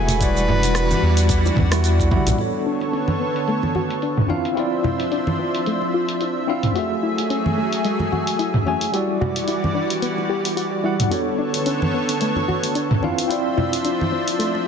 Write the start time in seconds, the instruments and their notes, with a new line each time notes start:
Already playing: analog synth bass E1, analog synth pad E3 A3 F#4 G#4, tine electric piano A3 F#4 G#4 E5 G#5, soprano saxophone B4
0.08 open hi-hat, low conga, shaker
0.19 analog synth pad E3 G3 D4 F#4, tine electric piano G3 E4 F#4 D5, kick, open hi-hat, shaker
0.37 shaker
0.48 mid tom, low conga
0.63 open hi-hat, high bongo, shaker
0.75 cross-stick, open hi-hat, shaker
0.91 high conga, shaker
1.02 analog synth bass E2
1.17 open hi-hat, shaker
1.29 kick, open hi-hat, shaker
1.46 high bongo, shaker
1.56 analog synth bass E2, kick, mid tom, high conga
1.71 tine electric piano G3 E4 F#4 D5, cross-stick, open hi-hat, shaker
1.84 open hi-hat, shaker
2.00 kick, shaker
2.11 tine electric piano G3 E4 F#4 F#5, kick, high tom
2.26 analog synth bass B1, mid tom, open hi-hat, high bongo, shaker
2.36 analog synth pad D3 B3 A4 C#5, tine electric piano B3 D4 A4, synth arpeggio sound F#4, open hi-hat
2.40 tine electric piano C#5
2.66 synth arpeggio sound D4
2.80 open hi-hat, high bongo
2.93 synth arpeggio sound C#4, open hi-hat
3.08 high conga
3.20 synth arpeggio sound B3
3.36 open hi-hat
3.48 synth arpeggio sound A3, open hi-hat
3.63 high bongo, high conga
3.75 synth arpeggio sound F#4, high conga
3.90 open hi-hat
4.02 synth arpeggio sound D4, open hi-hat
4.18 mid tom
4.28 analog synth pad F3 D4 C5 E5, tine electric piano C4 E4 F4 F5, synth arpeggio sound D4, high conga
4.45 open hi-hat
4.55 tine electric piano C4 E4 F4, synth arpeggio sound F4, open hi-hat
4.59 tine electric piano D5
4.84 synth arpeggio sound E4, low conga
5.00 open hi-hat, high bongo
5.12 synth arpeggio sound D4, open hi-hat
5.27 high conga
5.39 synth arpeggio sound C4
5.55 open hi-hat
5.66 synth arpeggio sound A3, open hi-hat
5.82 high bongo
5.94 synth arpeggio sound F4
6.09 open hi-hat
6.21 synth arpeggio sound E4, open hi-hat
6.47 tine electric piano C4 E4 F4 F5, synth arpeggio sound D4
6.63 mid tom, open hi-hat
6.74 analog synth pad F#3 A3 G#4, tine electric piano A3 F#4 G#4, synth arpeggio sound F#4, open hi-hat
6.78 tine electric piano E5
7.03 synth arpeggio sound E4
7.18 open hi-hat, high bongo
7.30 synth arpeggio sound C#4, open hi-hat
7.46 high conga
7.58 synth arpeggio sound A3
7.73 open hi-hat
7.84 synth arpeggio sound G#3, open hi-hat
7.99 high bongo, high conga
8.12 synth arpeggio sound F#4, high conga
8.27 open hi-hat
8.39 synth arpeggio sound E4, open hi-hat
8.54 mid tom
8.66 tine electric piano A3 F#4 G#4 G#5, synth arpeggio sound C#4, high conga
8.81 open hi-hat
8.92 analog synth pad E3 G3 F#4 D5, tine electric piano G3 E4 F#4, synth arpeggio sound G4, open hi-hat
8.96 tine electric piano D5
9.21 synth arpeggio sound F#4, low conga
9.36 open hi-hat, high bongo
9.48 synth arpeggio sound E4, open hi-hat
9.64 high conga
9.75 synth arpeggio sound D4
9.90 open hi-hat
10.02 synth arpeggio sound B3, open hi-hat
10.18 high bongo
10.29 synth arpeggio sound G4
10.45 open hi-hat
10.57 synth arpeggio sound F#4, open hi-hat
10.84 tine electric piano G3 E4 F#4 F#5, synth arpeggio sound E4
11.00 mid tom, open hi-hat
11.09 analog synth pad D3 B3 A4 C#5, tine electric piano B3 D4 A4, synth arpeggio sound F#4, open hi-hat
11.14 tine electric piano C#5
11.38 synth arpeggio sound D4
11.54 open hi-hat, high bongo
11.66 synth arpeggio sound C#4, open hi-hat
11.82 high conga
11.94 synth arpeggio sound B3
12.09 open hi-hat
12.21 synth arpeggio sound A3, open hi-hat
12.36 high bongo, high conga
12.48 synth arpeggio sound F#4, high conga
12.63 open hi-hat
12.75 synth arpeggio sound D4, open hi-hat
12.91 mid tom
13.02 analog synth pad F3 D4 C5 E5, tine electric piano C4 E4 F4 F5, synth arpeggio sound D4, high conga
13.18 open hi-hat
13.28 tine electric piano C4 E4 F4, synth arpeggio sound F4, open hi-hat
13.32 tine electric piano D5
13.57 synth arpeggio sound E4, low conga
13.73 open hi-hat, high bongo
13.85 synth arpeggio sound D4, open hi-hat
14.01 high conga
14.12 synth arpeggio sound C4
14.28 open hi-hat
14.39 synth arpeggio sound A3, open hi-hat
14.55 high bongo